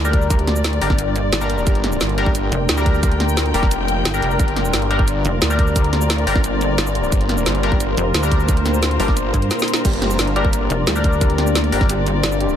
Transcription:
Already playing: D2 A#3 D4 F4 G4 A#4 D5
0.05 G3 D4 A#4, shaker
0.13 kick, closed hi-hat
0.22 shaker
0.30 kick, closed hi-hat, shaker
0.39 closed hi-hat
0.47 snare, closed hi-hat
0.56 shaker
0.64 snare, closed hi-hat, shaker
0.73 closed hi-hat
0.81 G1 G3 D4 A#4, open hi-hat
0.90 kick, snare
0.99 closed hi-hat, shaker
1.16 closed hi-hat, shaker
1.33 G1, snare, closed hi-hat, shaker
1.41 G3 D4 A#4, shaker
1.50 closed hi-hat
1.58 shaker
1.67 G1, kick, closed hi-hat, shaker
1.75 closed hi-hat
1.84 snare, closed hi-hat
1.92 shaker
2.01 G1, snare, closed hi-hat, shaker
2.09 closed hi-hat
2.18 G3 D4 A#4, closed hi-hat
2.26 kick
2.35 G5, closed hi-hat, shaker
2.52 F1, closed hi-hat, shaker
2.69 D2, snare, closed hi-hat, shaker
2.77 G3 D4 A#4, shaker
2.86 kick, closed hi-hat
2.95 shaker
3.03 kick, closed hi-hat, shaker
3.12 closed hi-hat
3.20 snare, closed hi-hat
3.29 shaker
3.37 snare, closed hi-hat, shaker
3.46 closed hi-hat
3.54 F1 G3 D4 A#4, open hi-hat
3.63 kick, snare
3.71 closed hi-hat, shaker
3.88 closed hi-hat, shaker
4.05 G1, snare, closed hi-hat, shaker
4.14 G3 D4 A#4, shaker
4.22 F1, closed hi-hat
4.31 shaker
4.39 G1 C5, kick, closed hi-hat, shaker
4.48 closed hi-hat
4.56 snare, closed hi-hat
4.65 shaker
4.73 G1, snare, closed hi-hat, shaker
4.82 closed hi-hat
4.91 G3 D4 A#4, closed hi-hat
4.99 kick
5.07 D5, closed hi-hat, shaker
5.25 F1, closed hi-hat, shaker
5.42 D2, snare, closed hi-hat, shaker
5.50 G3 D4 A#4, shaker
5.59 kick, closed hi-hat
5.67 shaker
5.76 kick, closed hi-hat, shaker
5.84 closed hi-hat
5.93 snare, closed hi-hat
6.01 shaker
6.10 snare, closed hi-hat, shaker
6.18 closed hi-hat
6.27 G1 G3 D4 A#4, open hi-hat
6.36 kick, snare
6.44 closed hi-hat, shaker
6.61 closed hi-hat, shaker
6.78 G1, snare, closed hi-hat, shaker
6.87 shaker
6.95 closed hi-hat
7.04 shaker
7.12 G1, kick, closed hi-hat, shaker
7.21 closed hi-hat
7.29 snare, closed hi-hat
7.38 shaker
7.46 G1, snare, closed hi-hat, shaker
7.55 closed hi-hat
7.63 G3 D4 A#4, closed hi-hat
7.72 kick
7.80 C5, closed hi-hat, shaker
7.97 F1, closed hi-hat, shaker
8.14 D2, snare, closed hi-hat, shaker
8.23 G3 D4 A#4, shaker
8.32 kick, closed hi-hat
8.40 shaker
8.49 kick, closed hi-hat, shaker
8.57 closed hi-hat
8.66 snare, closed hi-hat, shaker
8.74 shaker
8.83 snare, closed hi-hat, shaker
8.91 closed hi-hat
9.00 G1 G3 D4 A#4, open hi-hat
9.08 kick, snare
9.17 closed hi-hat, shaker
9.34 G2, kick, closed hi-hat, shaker
9.42 closed hi-hat
9.51 snare, closed hi-hat, shaker
9.59 snare, shaker
9.68 closed hi-hat, shaker
9.74 snare, shaker
9.85 G1 G3 C5, kick, closed hi-hat, crash, shaker
9.93 closed hi-hat
10.02 G3, snare, closed hi-hat
10.10 shaker
10.19 G1 D4, snare, closed hi-hat, shaker
10.27 closed hi-hat
10.36 G3 D4 G4 A#4, closed hi-hat
10.45 kick
10.53 D5, closed hi-hat, shaker
10.70 F1, closed hi-hat, shaker
10.87 D2 G3, snare, closed hi-hat, shaker
10.96 G3 D4 A#4, shaker
11.04 G3, kick, closed hi-hat
11.13 shaker
11.21 D4, kick, closed hi-hat, shaker
11.30 closed hi-hat
11.38 G4, snare, closed hi-hat
11.47 shaker
11.55 snare, closed hi-hat, shaker
11.64 closed hi-hat
11.72 G1 G3 D4 A#4, open hi-hat
11.81 kick, snare
11.89 G3, closed hi-hat, shaker
12.06 G3, closed hi-hat, shaker
12.23 G1 D4, snare, closed hi-hat, shaker
12.32 shaker
12.41 G4, closed hi-hat
12.49 shaker

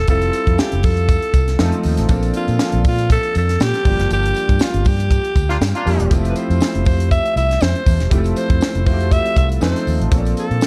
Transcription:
Already playing: G3 C4 E4 F4 A4
0.08 F1 G3 C4 E4 F4 A4, kick, closed hi-hat, tambourine
0.21 closed hi-hat, tambourine
0.33 closed hi-hat, tambourine
0.47 F2, kick, closed hi-hat
0.58 G4, snare, tambourine
0.72 F1, closed hi-hat
0.83 F2 A4, kick, open hi-hat, tambourine
0.97 closed hi-hat, tambourine
1.09 kick, closed hi-hat, tambourine
1.22 closed hi-hat
1.34 C2, kick, closed hi-hat, tambourine
1.48 snare, closed hi-hat
1.59 F2 F3 A3 C4 D#4 A4, snare, tambourine
1.72 closed hi-hat
1.83 D#2, open hi-hat, tambourine
1.97 A1, snare, closed hi-hat
2.09 A#1 F3 A#3 C4 D4 A4, kick, closed hi-hat, tambourine
2.23 closed hi-hat, tambourine
2.34 F4, closed hi-hat, tambourine
2.48 A#2, closed hi-hat, tambourine
2.59 snare, tambourine
2.72 A#1, closed hi-hat
2.84 A#2 F4, kick, open hi-hat, tambourine
2.98 closed hi-hat, tambourine
3.10 A4, kick, closed hi-hat, tambourine
3.23 closed hi-hat
3.35 F2 A4, closed hi-hat, tambourine
3.49 snare, closed hi-hat
3.60 A#2 G4, snare, tambourine
3.74 snare, closed hi-hat
3.84 G1 F3 G3 A#3 D4 G4, kick, open hi-hat, tambourine
3.99 F#1, snare, closed hi-hat
4.11 G1 G4, closed hi-hat, tambourine
4.23 closed hi-hat, tambourine
4.35 closed hi-hat, tambourine
4.49 G2, kick, closed hi-hat, tambourine
4.59 F4, snare, tambourine
4.74 G1, closed hi-hat
4.85 G2 G4, kick, open hi-hat, tambourine
5.00 closed hi-hat, tambourine
5.11 kick, closed hi-hat, tambourine
5.25 closed hi-hat
5.36 D2, kick, closed hi-hat, tambourine
5.49 A#3 D4 F4, snare, closed hi-hat
5.61 G2, snare, tambourine
5.75 A#3 D4 F4, closed hi-hat
5.86 F2 F3 G3 A#3 D4 G4, open hi-hat, tambourine
6.00 E1, closed hi-hat
6.10 F1 F3 A3 C4 E4 G4, kick, closed hi-hat, tambourine
6.25 closed hi-hat, tambourine
6.30 B4
6.36 C5, closed hi-hat, tambourine
6.50 F2, closed hi-hat, tambourine
6.60 snare, tambourine
6.75 F1, closed hi-hat
6.85 F2 C5, kick, open hi-hat, tambourine
7.00 closed hi-hat
7.11 E5, kick, closed hi-hat, tambourine
7.26 closed hi-hat
7.36 C2 E5, closed hi-hat, tambourine
7.49 snare, closed hi-hat, tambourine
7.61 F2 C5, snare, tambourine
7.75 closed hi-hat
7.86 E2, kick, open hi-hat, tambourine
8.00 E1, snare, closed hi-hat
8.10 F1 F3 A3 C4 E4 G4, kick, closed hi-hat, tambourine
8.18 A4
8.24 closed hi-hat, tambourine
8.36 C5, closed hi-hat, tambourine
8.50 F2, kick, closed hi-hat
8.61 snare, tambourine
8.75 F1, closed hi-hat
8.86 F2 F3 A3 C4 E4 F#4 C5, kick, open hi-hat, tambourine
8.93 G4
9.00 closed hi-hat, tambourine
9.11 E5, kick, closed hi-hat, tambourine
9.26 closed hi-hat
9.36 C2 E5, kick, closed hi-hat, tambourine
9.49 closed hi-hat, tambourine
9.60 F2 F3 A3 C4 D#4 G#4 C5, snare, tambourine
9.68 A4
9.76 snare, closed hi-hat
9.87 D#2, open hi-hat, tambourine
10.01 A1, closed hi-hat
10.10 A#1 F3 A#3 C4 C#4 A4, kick, closed hi-hat, tambourine
10.18 D4
10.25 closed hi-hat, tambourine
10.37 A4, closed hi-hat, tambourine
10.51 A#2, closed hi-hat
10.61 snare, tambourine

